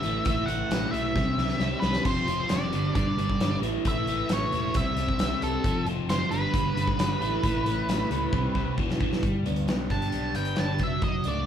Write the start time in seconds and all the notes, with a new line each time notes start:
Already playing: E5
0.03 A1 A2 E3 A3, closed hi-hat
0.25 A1 A2 E3 A3 E5, kick, closed hi-hat
0.46 A1 A2 E3 A3 F#5, closed hi-hat
0.69 A1 A2 E3 A3, snare, closed hi-hat
0.91 B1 A2 E3 A3 E5, closed hi-hat
1.15 C2 C3 G3 C4, kick, snare
1.37 C2 C3 G3 C4, snare
1.49 snare
1.59 C2 C3 G3 C4, snare
1.80 C2 C3 G3 C4 B4, snare
1.93 snare
2.05 F1 F2 C3 F3 C5, kick, crash
2.27 F1 F2 C3 F3, closed hi-hat
2.49 F1 F2 C3 F3 D5, snare, closed hi-hat
2.72 G1 G2 D3 G3, closed hi-hat
2.95 G1 G2 D3 G3 D5, kick, closed hi-hat
3.17 G1 G2 D3 G3, closed hi-hat
3.30 kick
3.40 G1 G2 D3 G3, snare, closed hi-hat
3.60 A1 A2 E3 A3, closed hi-hat
3.85 A1 A2 E3 A3 E5, kick, closed hi-hat
4.07 A1 A2 E3 A3, closed hi-hat
4.29 A1 A2 E3 A3 C#5, snare, closed hi-hat
4.52 E1 A2 E3 A3, closed hi-hat
4.74 C2 C3 G3 C4 E5, kick, closed hi-hat
4.96 C2 C3 G3 C4, closed hi-hat
5.08 kick
5.18 C2 C3 G3 C4, snare, closed hi-hat
5.42 C2 C3 G3 C4 A4, closed hi-hat
5.64 F1 F2 C3 F3, kick, closed hi-hat
5.85 F1 F2 C3 F3, closed hi-hat
6.07 F#1 F2 C3 F3 C5, snare, closed hi-hat
6.31 G1 G2 D3 G3 B4, closed hi-hat
6.54 G1 G2 D3 G3, kick, closed hi-hat
6.75 G1 G2 D3 G3, closed hi-hat
6.87 kick
6.99 G1 G2 D3 G3, snare, closed hi-hat
7.21 A1 A2 E3 A3, closed hi-hat
7.43 A1 A2 E3 A3, kick, closed hi-hat
7.66 A1 A2 E3 A3, closed hi-hat
7.87 A1 A2 E3 A3, snare, closed hi-hat
8.11 C#2 A2 E3 A3, closed hi-hat
8.33 C2 C3 G3 C4, kick
8.54 C2 C3 G3 C4, kick
8.77 E1 E2 B2 E3, kick
8.90 snare
9.00 E1 E2 B2 E3, kick
9.13 snare
9.23 G1 G3, kick, closed hi-hat
9.44 D2 B3 D4, closed hi-hat
9.56 closed hi-hat
9.66 B1 B3, snare, closed hi-hat
9.89 G1 D4 G4 A5, kick, closed hi-hat
10.02 closed hi-hat
10.12 B1 D4 G4, closed hi-hat
10.34 G1 B3 B4 G5, closed hi-hat
10.45 closed hi-hat
10.56 G1 D4 G4 A5, snare, closed hi-hat
10.79 F#1 F#3, kick, closed hi-hat
10.83 E5
11.02 F#1 F#3 D#5, kick, closed hi-hat
11.24 C#2 A3 D4, closed hi-hat
11.28 D5